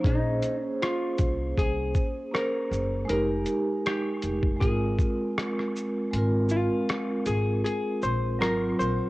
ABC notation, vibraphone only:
X:1
M:4/4
L:1/8
Q:"Swing 16ths" 1/4=79
K:Ab
V:1 name="Vibraphone"
[B,DAc]6 [B,DAc]2 | [A,EGB]4 [A,CFB]4 | [A,CFB]6 [_G,CFB]2 |]